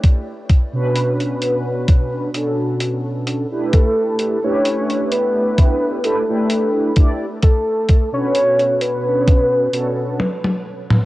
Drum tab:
HH |x-x-xxx-x-x-x-x-|x-x-xxx-x-x-x-x-|x-x-xxx-x-x-----|
T1 |----------------|----------------|------------oo--|
T2 |----------------|----------------|---------------o|
BD |o-o-----o-------|o-------o-----o-|o-o-----o-------|